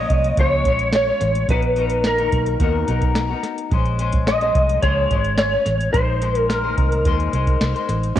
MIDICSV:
0, 0, Header, 1, 6, 480
1, 0, Start_track
1, 0, Tempo, 556690
1, 1283, Time_signature, 4, 2, 24, 8
1, 7068, End_track
2, 0, Start_track
2, 0, Title_t, "Electric slide guitar"
2, 0, Program_c, 0, 29
2, 0, Note_on_c, 0, 75, 91
2, 337, Note_off_c, 0, 75, 0
2, 341, Note_on_c, 0, 73, 86
2, 779, Note_off_c, 0, 73, 0
2, 818, Note_on_c, 0, 73, 81
2, 1257, Note_off_c, 0, 73, 0
2, 1298, Note_on_c, 0, 71, 92
2, 1774, Note_off_c, 0, 71, 0
2, 1778, Note_on_c, 0, 70, 65
2, 2935, Note_off_c, 0, 70, 0
2, 3686, Note_on_c, 0, 75, 91
2, 4159, Note_on_c, 0, 73, 94
2, 4178, Note_off_c, 0, 75, 0
2, 4628, Note_off_c, 0, 73, 0
2, 4638, Note_on_c, 0, 73, 89
2, 5109, Note_off_c, 0, 73, 0
2, 5112, Note_on_c, 0, 72, 92
2, 5500, Note_off_c, 0, 72, 0
2, 5500, Note_on_c, 0, 70, 92
2, 5598, Note_off_c, 0, 70, 0
2, 5598, Note_on_c, 0, 70, 65
2, 6766, Note_off_c, 0, 70, 0
2, 7068, End_track
3, 0, Start_track
3, 0, Title_t, "Clean electric guitar"
3, 0, Program_c, 1, 27
3, 0, Note_on_c, 1, 46, 56
3, 0, Note_on_c, 1, 53, 53
3, 0, Note_on_c, 1, 56, 61
3, 0, Note_on_c, 1, 61, 56
3, 0, Note_on_c, 1, 65, 62
3, 0, Note_on_c, 1, 73, 65
3, 316, Note_off_c, 1, 46, 0
3, 320, Note_off_c, 1, 53, 0
3, 322, Note_off_c, 1, 56, 0
3, 322, Note_off_c, 1, 73, 0
3, 325, Note_off_c, 1, 61, 0
3, 325, Note_off_c, 1, 65, 0
3, 326, Note_on_c, 1, 46, 71
3, 330, Note_on_c, 1, 53, 75
3, 332, Note_on_c, 1, 56, 78
3, 335, Note_on_c, 1, 61, 68
3, 340, Note_on_c, 1, 65, 88
3, 340, Note_on_c, 1, 73, 75
3, 554, Note_off_c, 1, 56, 0
3, 565, Note_off_c, 1, 46, 0
3, 565, Note_off_c, 1, 61, 0
3, 565, Note_on_c, 1, 56, 52
3, 566, Note_off_c, 1, 53, 0
3, 571, Note_off_c, 1, 65, 0
3, 571, Note_off_c, 1, 73, 0
3, 575, Note_on_c, 1, 61, 57
3, 584, Note_on_c, 1, 65, 61
3, 586, Note_on_c, 1, 73, 60
3, 914, Note_off_c, 1, 73, 0
3, 924, Note_off_c, 1, 56, 0
3, 925, Note_off_c, 1, 65, 0
3, 925, Note_on_c, 1, 73, 50
3, 929, Note_off_c, 1, 61, 0
3, 936, Note_on_c, 1, 65, 46
3, 940, Note_on_c, 1, 61, 39
3, 947, Note_on_c, 1, 56, 38
3, 1281, Note_off_c, 1, 56, 0
3, 1284, Note_off_c, 1, 73, 0
3, 1285, Note_on_c, 1, 59, 59
3, 1289, Note_off_c, 1, 65, 0
3, 1290, Note_off_c, 1, 61, 0
3, 1293, Note_on_c, 1, 63, 58
3, 1302, Note_on_c, 1, 66, 58
3, 1306, Note_on_c, 1, 70, 62
3, 1509, Note_off_c, 1, 59, 0
3, 1516, Note_off_c, 1, 63, 0
3, 1519, Note_on_c, 1, 59, 56
3, 1524, Note_off_c, 1, 66, 0
3, 1527, Note_on_c, 1, 63, 56
3, 1531, Note_off_c, 1, 70, 0
3, 1535, Note_on_c, 1, 66, 58
3, 1541, Note_on_c, 1, 70, 60
3, 1868, Note_off_c, 1, 70, 0
3, 1871, Note_off_c, 1, 66, 0
3, 1876, Note_off_c, 1, 63, 0
3, 1878, Note_on_c, 1, 70, 66
3, 1881, Note_off_c, 1, 59, 0
3, 1882, Note_on_c, 1, 66, 60
3, 1886, Note_on_c, 1, 63, 62
3, 1893, Note_on_c, 1, 46, 54
3, 1893, Note_on_c, 1, 51, 56
3, 2228, Note_off_c, 1, 46, 0
3, 2230, Note_off_c, 1, 51, 0
3, 2237, Note_off_c, 1, 63, 0
3, 2238, Note_on_c, 1, 46, 76
3, 2240, Note_off_c, 1, 66, 0
3, 2240, Note_off_c, 1, 70, 0
3, 2241, Note_on_c, 1, 51, 73
3, 2244, Note_on_c, 1, 59, 85
3, 2247, Note_on_c, 1, 63, 75
3, 2250, Note_on_c, 1, 66, 77
3, 2256, Note_on_c, 1, 70, 88
3, 2463, Note_off_c, 1, 59, 0
3, 2472, Note_off_c, 1, 63, 0
3, 2474, Note_on_c, 1, 59, 67
3, 2479, Note_off_c, 1, 66, 0
3, 2480, Note_off_c, 1, 46, 0
3, 2482, Note_off_c, 1, 51, 0
3, 2482, Note_on_c, 1, 63, 67
3, 2484, Note_off_c, 1, 70, 0
3, 2490, Note_on_c, 1, 66, 72
3, 2495, Note_on_c, 1, 70, 72
3, 2825, Note_off_c, 1, 70, 0
3, 2831, Note_off_c, 1, 66, 0
3, 2836, Note_on_c, 1, 70, 48
3, 2838, Note_off_c, 1, 59, 0
3, 2840, Note_off_c, 1, 63, 0
3, 2841, Note_on_c, 1, 66, 55
3, 2850, Note_on_c, 1, 63, 40
3, 2854, Note_on_c, 1, 59, 40
3, 3192, Note_off_c, 1, 59, 0
3, 3195, Note_on_c, 1, 56, 65
3, 3199, Note_off_c, 1, 70, 0
3, 3202, Note_off_c, 1, 66, 0
3, 3203, Note_off_c, 1, 63, 0
3, 3207, Note_on_c, 1, 61, 62
3, 3212, Note_on_c, 1, 68, 64
3, 3219, Note_on_c, 1, 72, 71
3, 3426, Note_off_c, 1, 56, 0
3, 3433, Note_off_c, 1, 61, 0
3, 3436, Note_on_c, 1, 56, 59
3, 3439, Note_off_c, 1, 68, 0
3, 3443, Note_on_c, 1, 61, 60
3, 3449, Note_off_c, 1, 72, 0
3, 3449, Note_on_c, 1, 68, 69
3, 3459, Note_on_c, 1, 72, 76
3, 3790, Note_off_c, 1, 72, 0
3, 3797, Note_off_c, 1, 68, 0
3, 3798, Note_off_c, 1, 61, 0
3, 3799, Note_off_c, 1, 56, 0
3, 3801, Note_on_c, 1, 72, 64
3, 3807, Note_on_c, 1, 68, 60
3, 3809, Note_on_c, 1, 61, 66
3, 3811, Note_on_c, 1, 56, 62
3, 3815, Note_on_c, 1, 53, 55
3, 3817, Note_on_c, 1, 46, 57
3, 4152, Note_off_c, 1, 46, 0
3, 4156, Note_off_c, 1, 53, 0
3, 4159, Note_off_c, 1, 56, 0
3, 4161, Note_off_c, 1, 72, 0
3, 4162, Note_off_c, 1, 61, 0
3, 4163, Note_on_c, 1, 46, 73
3, 4165, Note_off_c, 1, 68, 0
3, 4167, Note_on_c, 1, 53, 75
3, 4169, Note_on_c, 1, 56, 76
3, 4172, Note_on_c, 1, 61, 85
3, 4174, Note_on_c, 1, 68, 88
3, 4177, Note_on_c, 1, 72, 87
3, 4392, Note_off_c, 1, 56, 0
3, 4398, Note_off_c, 1, 61, 0
3, 4403, Note_off_c, 1, 46, 0
3, 4403, Note_on_c, 1, 56, 54
3, 4404, Note_off_c, 1, 53, 0
3, 4408, Note_off_c, 1, 68, 0
3, 4408, Note_on_c, 1, 61, 56
3, 4409, Note_off_c, 1, 72, 0
3, 4418, Note_on_c, 1, 68, 61
3, 4421, Note_on_c, 1, 72, 57
3, 4760, Note_off_c, 1, 68, 0
3, 4762, Note_off_c, 1, 56, 0
3, 4765, Note_off_c, 1, 61, 0
3, 4771, Note_off_c, 1, 72, 0
3, 4771, Note_on_c, 1, 68, 42
3, 4777, Note_on_c, 1, 61, 40
3, 4784, Note_on_c, 1, 56, 37
3, 5109, Note_off_c, 1, 56, 0
3, 5120, Note_on_c, 1, 56, 57
3, 5126, Note_off_c, 1, 68, 0
3, 5127, Note_off_c, 1, 61, 0
3, 5130, Note_on_c, 1, 63, 62
3, 5135, Note_on_c, 1, 68, 57
3, 5140, Note_on_c, 1, 72, 57
3, 5347, Note_off_c, 1, 56, 0
3, 5358, Note_off_c, 1, 63, 0
3, 5358, Note_on_c, 1, 56, 53
3, 5366, Note_off_c, 1, 68, 0
3, 5368, Note_on_c, 1, 63, 53
3, 5369, Note_off_c, 1, 72, 0
3, 5376, Note_on_c, 1, 68, 67
3, 5380, Note_on_c, 1, 72, 67
3, 5712, Note_off_c, 1, 72, 0
3, 5719, Note_off_c, 1, 68, 0
3, 5720, Note_off_c, 1, 56, 0
3, 5720, Note_off_c, 1, 63, 0
3, 5722, Note_on_c, 1, 72, 75
3, 5729, Note_on_c, 1, 68, 70
3, 5730, Note_on_c, 1, 63, 52
3, 5735, Note_on_c, 1, 56, 64
3, 5737, Note_on_c, 1, 46, 47
3, 5737, Note_on_c, 1, 51, 55
3, 6071, Note_off_c, 1, 46, 0
3, 6076, Note_off_c, 1, 51, 0
3, 6079, Note_off_c, 1, 56, 0
3, 6081, Note_off_c, 1, 63, 0
3, 6082, Note_off_c, 1, 72, 0
3, 6082, Note_on_c, 1, 46, 78
3, 6086, Note_off_c, 1, 68, 0
3, 6086, Note_on_c, 1, 51, 82
3, 6089, Note_on_c, 1, 56, 69
3, 6092, Note_on_c, 1, 63, 72
3, 6096, Note_on_c, 1, 68, 77
3, 6097, Note_on_c, 1, 72, 85
3, 6306, Note_off_c, 1, 56, 0
3, 6316, Note_off_c, 1, 63, 0
3, 6316, Note_on_c, 1, 56, 66
3, 6322, Note_off_c, 1, 46, 0
3, 6324, Note_off_c, 1, 51, 0
3, 6326, Note_off_c, 1, 68, 0
3, 6326, Note_on_c, 1, 63, 67
3, 6330, Note_off_c, 1, 72, 0
3, 6336, Note_on_c, 1, 68, 70
3, 6341, Note_on_c, 1, 72, 74
3, 6665, Note_off_c, 1, 72, 0
3, 6673, Note_off_c, 1, 68, 0
3, 6676, Note_on_c, 1, 72, 55
3, 6679, Note_off_c, 1, 56, 0
3, 6682, Note_off_c, 1, 63, 0
3, 6683, Note_on_c, 1, 68, 44
3, 6692, Note_on_c, 1, 63, 45
3, 6699, Note_on_c, 1, 56, 44
3, 7025, Note_off_c, 1, 56, 0
3, 7036, Note_on_c, 1, 56, 57
3, 7039, Note_off_c, 1, 72, 0
3, 7040, Note_off_c, 1, 63, 0
3, 7043, Note_off_c, 1, 68, 0
3, 7068, Note_off_c, 1, 56, 0
3, 7068, End_track
4, 0, Start_track
4, 0, Title_t, "Synth keys"
4, 0, Program_c, 2, 88
4, 7034, Note_on_c, 2, 56, 73
4, 7041, Note_on_c, 2, 61, 67
4, 7068, Note_off_c, 2, 56, 0
4, 7068, Note_off_c, 2, 61, 0
4, 7068, End_track
5, 0, Start_track
5, 0, Title_t, "Fingered electric bass"
5, 0, Program_c, 3, 33
5, 86, Note_on_c, 3, 36, 79
5, 277, Note_off_c, 3, 36, 0
5, 323, Note_on_c, 3, 37, 87
5, 565, Note_off_c, 3, 37, 0
5, 565, Note_on_c, 3, 34, 81
5, 948, Note_off_c, 3, 34, 0
5, 1048, Note_on_c, 3, 33, 78
5, 1238, Note_off_c, 3, 33, 0
5, 1281, Note_on_c, 3, 34, 86
5, 1967, Note_off_c, 3, 34, 0
5, 2005, Note_on_c, 3, 35, 85
5, 2196, Note_off_c, 3, 35, 0
5, 2241, Note_on_c, 3, 39, 89
5, 2433, Note_off_c, 3, 39, 0
5, 2484, Note_on_c, 3, 35, 75
5, 2867, Note_off_c, 3, 35, 0
5, 3203, Note_on_c, 3, 34, 85
5, 3888, Note_off_c, 3, 34, 0
5, 3924, Note_on_c, 3, 36, 89
5, 4115, Note_off_c, 3, 36, 0
5, 4161, Note_on_c, 3, 37, 99
5, 4354, Note_off_c, 3, 37, 0
5, 4401, Note_on_c, 3, 32, 80
5, 4786, Note_off_c, 3, 32, 0
5, 4883, Note_on_c, 3, 33, 72
5, 5075, Note_off_c, 3, 33, 0
5, 5123, Note_on_c, 3, 34, 87
5, 5808, Note_off_c, 3, 34, 0
5, 5844, Note_on_c, 3, 36, 82
5, 6081, Note_off_c, 3, 36, 0
5, 6081, Note_on_c, 3, 39, 95
5, 6273, Note_off_c, 3, 39, 0
5, 6323, Note_on_c, 3, 36, 78
5, 6514, Note_off_c, 3, 36, 0
5, 6561, Note_on_c, 3, 36, 79
5, 6657, Note_off_c, 3, 36, 0
5, 6801, Note_on_c, 3, 33, 73
5, 6993, Note_off_c, 3, 33, 0
5, 7068, End_track
6, 0, Start_track
6, 0, Title_t, "Drums"
6, 86, Note_on_c, 9, 42, 64
6, 87, Note_on_c, 9, 36, 82
6, 173, Note_off_c, 9, 36, 0
6, 173, Note_off_c, 9, 42, 0
6, 210, Note_on_c, 9, 42, 49
6, 297, Note_off_c, 9, 42, 0
6, 322, Note_on_c, 9, 42, 86
6, 323, Note_on_c, 9, 36, 85
6, 408, Note_off_c, 9, 42, 0
6, 409, Note_off_c, 9, 36, 0
6, 563, Note_on_c, 9, 42, 60
6, 565, Note_on_c, 9, 36, 80
6, 649, Note_off_c, 9, 42, 0
6, 651, Note_off_c, 9, 36, 0
6, 682, Note_on_c, 9, 42, 45
6, 768, Note_off_c, 9, 42, 0
6, 798, Note_on_c, 9, 38, 112
6, 801, Note_on_c, 9, 42, 73
6, 884, Note_off_c, 9, 38, 0
6, 888, Note_off_c, 9, 42, 0
6, 1040, Note_on_c, 9, 38, 35
6, 1043, Note_on_c, 9, 42, 78
6, 1126, Note_off_c, 9, 38, 0
6, 1129, Note_off_c, 9, 42, 0
6, 1166, Note_on_c, 9, 42, 54
6, 1252, Note_off_c, 9, 42, 0
6, 1282, Note_on_c, 9, 36, 111
6, 1284, Note_on_c, 9, 42, 99
6, 1369, Note_off_c, 9, 36, 0
6, 1370, Note_off_c, 9, 42, 0
6, 1401, Note_on_c, 9, 42, 34
6, 1487, Note_off_c, 9, 42, 0
6, 1519, Note_on_c, 9, 42, 74
6, 1605, Note_off_c, 9, 42, 0
6, 1635, Note_on_c, 9, 42, 57
6, 1722, Note_off_c, 9, 42, 0
6, 1758, Note_on_c, 9, 38, 94
6, 1764, Note_on_c, 9, 42, 75
6, 1844, Note_off_c, 9, 38, 0
6, 1850, Note_off_c, 9, 42, 0
6, 1882, Note_on_c, 9, 42, 32
6, 1969, Note_off_c, 9, 42, 0
6, 2003, Note_on_c, 9, 42, 65
6, 2004, Note_on_c, 9, 36, 81
6, 2089, Note_off_c, 9, 42, 0
6, 2090, Note_off_c, 9, 36, 0
6, 2123, Note_on_c, 9, 42, 50
6, 2209, Note_off_c, 9, 42, 0
6, 2240, Note_on_c, 9, 36, 89
6, 2241, Note_on_c, 9, 42, 90
6, 2327, Note_off_c, 9, 36, 0
6, 2327, Note_off_c, 9, 42, 0
6, 2481, Note_on_c, 9, 42, 63
6, 2567, Note_off_c, 9, 42, 0
6, 2600, Note_on_c, 9, 42, 44
6, 2601, Note_on_c, 9, 36, 72
6, 2686, Note_off_c, 9, 42, 0
6, 2687, Note_off_c, 9, 36, 0
6, 2717, Note_on_c, 9, 38, 97
6, 2720, Note_on_c, 9, 42, 70
6, 2803, Note_off_c, 9, 38, 0
6, 2807, Note_off_c, 9, 42, 0
6, 2958, Note_on_c, 9, 38, 38
6, 2961, Note_on_c, 9, 42, 76
6, 3045, Note_off_c, 9, 38, 0
6, 3048, Note_off_c, 9, 42, 0
6, 3086, Note_on_c, 9, 42, 47
6, 3172, Note_off_c, 9, 42, 0
6, 3202, Note_on_c, 9, 36, 106
6, 3202, Note_on_c, 9, 42, 97
6, 3288, Note_off_c, 9, 36, 0
6, 3288, Note_off_c, 9, 42, 0
6, 3324, Note_on_c, 9, 42, 33
6, 3410, Note_off_c, 9, 42, 0
6, 3440, Note_on_c, 9, 42, 74
6, 3526, Note_off_c, 9, 42, 0
6, 3557, Note_on_c, 9, 42, 55
6, 3563, Note_on_c, 9, 36, 88
6, 3643, Note_off_c, 9, 42, 0
6, 3650, Note_off_c, 9, 36, 0
6, 3682, Note_on_c, 9, 38, 103
6, 3688, Note_on_c, 9, 42, 74
6, 3768, Note_off_c, 9, 38, 0
6, 3774, Note_off_c, 9, 42, 0
6, 3804, Note_on_c, 9, 42, 31
6, 3891, Note_off_c, 9, 42, 0
6, 3924, Note_on_c, 9, 36, 86
6, 3924, Note_on_c, 9, 42, 62
6, 4010, Note_off_c, 9, 36, 0
6, 4010, Note_off_c, 9, 42, 0
6, 4047, Note_on_c, 9, 42, 53
6, 4133, Note_off_c, 9, 42, 0
6, 4160, Note_on_c, 9, 42, 80
6, 4161, Note_on_c, 9, 36, 84
6, 4247, Note_off_c, 9, 36, 0
6, 4247, Note_off_c, 9, 42, 0
6, 4404, Note_on_c, 9, 36, 79
6, 4404, Note_on_c, 9, 42, 63
6, 4490, Note_off_c, 9, 36, 0
6, 4490, Note_off_c, 9, 42, 0
6, 4523, Note_on_c, 9, 42, 43
6, 4609, Note_off_c, 9, 42, 0
6, 4636, Note_on_c, 9, 38, 111
6, 4639, Note_on_c, 9, 42, 68
6, 4722, Note_off_c, 9, 38, 0
6, 4726, Note_off_c, 9, 42, 0
6, 4878, Note_on_c, 9, 38, 34
6, 4881, Note_on_c, 9, 42, 76
6, 4964, Note_off_c, 9, 38, 0
6, 4967, Note_off_c, 9, 42, 0
6, 5007, Note_on_c, 9, 42, 50
6, 5093, Note_off_c, 9, 42, 0
6, 5122, Note_on_c, 9, 36, 98
6, 5124, Note_on_c, 9, 42, 97
6, 5209, Note_off_c, 9, 36, 0
6, 5210, Note_off_c, 9, 42, 0
6, 5361, Note_on_c, 9, 42, 74
6, 5447, Note_off_c, 9, 42, 0
6, 5478, Note_on_c, 9, 42, 53
6, 5564, Note_off_c, 9, 42, 0
6, 5603, Note_on_c, 9, 38, 86
6, 5609, Note_on_c, 9, 42, 78
6, 5689, Note_off_c, 9, 38, 0
6, 5695, Note_off_c, 9, 42, 0
6, 5844, Note_on_c, 9, 36, 83
6, 5844, Note_on_c, 9, 42, 56
6, 5930, Note_off_c, 9, 42, 0
6, 5931, Note_off_c, 9, 36, 0
6, 5968, Note_on_c, 9, 42, 49
6, 6054, Note_off_c, 9, 42, 0
6, 6082, Note_on_c, 9, 36, 90
6, 6082, Note_on_c, 9, 42, 94
6, 6168, Note_off_c, 9, 36, 0
6, 6168, Note_off_c, 9, 42, 0
6, 6208, Note_on_c, 9, 42, 32
6, 6295, Note_off_c, 9, 42, 0
6, 6323, Note_on_c, 9, 42, 61
6, 6409, Note_off_c, 9, 42, 0
6, 6442, Note_on_c, 9, 36, 74
6, 6444, Note_on_c, 9, 42, 46
6, 6529, Note_off_c, 9, 36, 0
6, 6530, Note_off_c, 9, 42, 0
6, 6561, Note_on_c, 9, 38, 111
6, 6564, Note_on_c, 9, 42, 76
6, 6647, Note_off_c, 9, 38, 0
6, 6651, Note_off_c, 9, 42, 0
6, 6690, Note_on_c, 9, 42, 29
6, 6777, Note_off_c, 9, 42, 0
6, 6801, Note_on_c, 9, 38, 34
6, 6804, Note_on_c, 9, 42, 81
6, 6887, Note_off_c, 9, 38, 0
6, 6890, Note_off_c, 9, 42, 0
6, 6927, Note_on_c, 9, 42, 46
6, 7014, Note_off_c, 9, 42, 0
6, 7068, End_track
0, 0, End_of_file